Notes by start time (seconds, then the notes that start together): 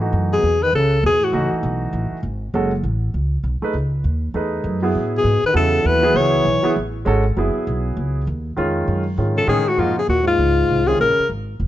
Already playing: G#2
0.00 E3 A3 D#4 F#4
0.13 F#2
0.32 B2 G#4
0.43 E2
0.62 D#3 B4
0.73 C#2 C#3 A4
1.03 E2 B2 G#4
1.20 A2 F#4
1.33 C#2 E3 A3 D#4 F#4
1.52 muted upright bass stroke
1.63 B1
1.93 A1
2.11 muted upright bass stroke
2.23 G#1
2.54 F#1 G#3 C#4 F#4 A4
2.83 A1
3.14 C#2
3.43 B1
3.62 A3 D#4 G#4 B4, muted upright bass stroke
3.73 C#2
4.04 D#2
4.34 E2 A3 D#4 G#4 B4
4.64 F#2
4.82 F#3 B3 E4 G#4
4.95 A2
5.16 B2 G#4
5.24 G#2
5.43 D#3 B4, muted upright bass stroke
5.53 E2 C#3 F#3 B3 E4 A4
5.84 D#2 E3 B4
6.02 F#3 B3 E4 G#4
6.14 C#2 E3 C#5
6.45 B1
6.63 F#3 B3 E4 G#4, muted upright bass stroke
6.76 A1
7.05 G#1 G#3 C#4 F#4 A4
7.37 F#1 F#3 B3 E4 G#4
7.56 muted upright bass stroke
7.67 B1
7.97 C#2
8.27 D#2
8.57 F2 D#3 G#3 C#4 F4
8.88 F#2
9.18 G#2 D#3 G#3 C#4 F4
9.34 C#3 A4
9.47 A2 C#3 D#3 G#3 C#4 G#4
9.64 A2 F#4
9.75 F2 G#2 F3 A#3 D#4
9.79 F4 F#4
9.94 C3
9.99 G#4
10.06 D#2 A#2 F#4
10.23 G#2
10.27 F4
10.39 C#2
10.69 C2
10.86 C3 D#3 G#3 C#4 F4 G#4
10.98 A#1 C#3 A#4
11.19 muted upright bass stroke
11.29 G#1
11.60 F1